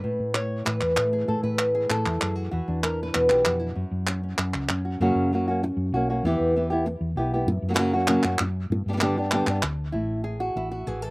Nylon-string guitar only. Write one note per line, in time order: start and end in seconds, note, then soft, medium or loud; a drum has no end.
0.00 1.26 A2 medium
0.00 0.34 B4 medium
0.34 0.65 C#5 medium
0.65 1.89 E3 soft
0.65 1.28 B4 medium
0.97 2.52 A3 soft
1.13 1.59 G#4 medium
1.28 2.50 A2 medium
1.28 1.43 A4 medium
1.43 1.90 B4 medium
1.75 2.06 G#4 medium
1.90 2.50 E3 soft
1.90 2.35 A4 medium
2.07 2.20 E4 soft
2.21 2.52 G#4 medium
2.35 2.50 F#4 medium
2.51 3.74 E3 medium
2.51 2.83 F#4 medium
2.68 3.74 D4 soft
2.83 3.02 A#4 medium
3.03 3.45 B4 medium
3.14 3.74 B2 medium
3.29 3.59 G4 medium
3.45 3.74 F#4 medium
3.59 3.75 E4 medium
3.75 4.37 F#2 medium
3.75 4.84 F#4 medium
4.07 4.22 C#4 soft
4.23 4.69 C#4 soft
4.39 6.24 F#2 soft
4.70 4.99 C#4 soft
4.85 4.98 F#4 soft
5.01 5.30 C#3 medium
5.01 5.31 F#3 medium
5.01 5.31 A#3 medium
5.01 5.31 C#4 medium
5.01 5.31 F#4 medium
5.32 5.46 F#3 medium
5.32 5.47 A#3 medium
5.32 5.47 C#4 medium
5.32 5.46 F#4 medium
5.48 5.62 A#3 soft
5.48 5.62 C#4 medium
5.48 5.62 F#4 soft
5.63 muted nylon-string guitar stroke medium
5.94 6.09 A#3 soft
5.94 6.09 C#4 medium
5.94 6.08 F#4 medium
6.10 6.24 A#3 soft
6.10 6.24 C#4 soft
6.10 6.24 F#4 soft
6.25 6.54 E3 medium
6.25 6.54 B3 medium
6.25 6.55 E4 medium
6.25 6.55 G4 medium
6.56 6.70 E3 medium
6.56 6.70 B3 medium
6.56 6.71 E4 medium
6.56 6.69 G4 medium
6.70 6.85 B3 soft
6.70 6.85 E4 medium
6.70 6.85 G4 medium
6.86 muted nylon-string guitar stroke medium
7.17 7.32 B3 soft
7.17 7.32 E4 medium
7.17 7.31 G4 medium
7.34 7.48 B3 soft
7.34 7.47 E4 soft
7.34 7.47 G4 soft
7.48 muted nylon-string guitar stroke medium
7.69 7.73 F#3 medium
7.69 7.73 A#3 soft
7.69 7.73 C#4 soft
7.69 7.74 F#4 soft
7.74 7.77 F#3 medium
7.74 7.77 A#3 medium
7.74 7.78 C#4 medium
7.74 7.78 F#4 medium
7.78 7.93 C#3 medium
7.78 7.93 F#3 medium
7.78 7.93 A#3 medium
7.78 7.93 C#4 medium
7.78 7.92 F#4 medium
7.93 8.07 A#3 soft
7.93 8.08 C#4 soft
7.93 8.08 F#4 medium
8.08 8.23 C#3 medium
8.08 8.23 F#3 medium
8.08 8.23 A#3 medium
8.08 8.23 C#4 medium
8.08 8.23 F#4 medium
8.24 8.40 A#3 soft
8.24 8.39 C#4 soft
8.24 8.39 F#4 soft
8.40 muted nylon-string guitar stroke medium
8.72 muted nylon-string guitar stroke medium
8.88 8.92 G3 soft
8.88 8.92 B3 soft
8.88 8.93 D4 soft
8.88 8.93 G4 soft
8.93 8.96 G3 medium
8.93 8.96 B3 medium
8.93 8.97 D4 medium
8.93 8.97 G4 medium
8.97 9.01 G3 medium
8.97 9.01 B3 medium
8.97 9.01 D4 medium
8.97 9.01 G4 medium
9.02 9.16 D3 medium
9.02 9.16 G3 medium
9.02 9.16 B3 medium
9.02 9.17 D4 medium
9.02 9.16 G4 medium
9.17 9.32 B3 soft
9.17 9.32 D4 soft
9.17 9.32 G4 soft
9.32 9.47 D3 medium
9.32 9.47 G3 medium
9.32 9.47 B3 medium
9.32 9.47 D4 medium
9.32 9.46 G4 loud
9.47 9.62 B3 soft
9.47 9.62 D4 soft
9.47 9.62 G4 soft
9.62 muted nylon-string guitar stroke medium
9.92 11.10 A2 medium
9.92 10.23 E4 medium
10.24 10.55 G#4 medium
10.40 10.70 F#4 medium
10.57 10.87 E4 medium
10.71 11.02 F#4 medium
10.87 11.10 E3 medium
10.87 11.10 G#4 medium
11.02 11.10 A4 medium